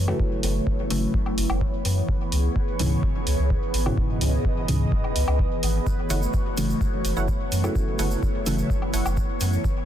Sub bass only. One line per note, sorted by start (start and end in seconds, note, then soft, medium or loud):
0.00 0.13 F#2 loud
0.43 0.60 F#1 loud
0.90 1.07 F#1 medium
1.38 1.46 F#1 medium
1.50 1.66 F#1 medium
1.85 2.02 F#2 loud
2.32 2.49 C#2 loud
2.79 2.96 C#2 medium
3.27 3.35 C#2 medium
3.39 3.55 C#2 medium
3.74 3.91 G#1 loud
4.21 4.38 C#2 loud
4.68 4.85 C#2 medium
5.16 5.24 C#2 medium
5.28 5.44 C#2 medium
5.63 5.80 G#1 loud
6.10 6.27 F#1 loud
6.57 6.74 F#1 medium
7.05 7.13 F#1 medium
7.17 7.33 F#1 medium
7.52 7.69 F#2 loud
7.99 8.16 F#1 loud
8.46 8.63 F#1 medium
8.94 9.02 F#1 medium
9.06 9.22 F#1 medium
9.41 9.58 F#2 loud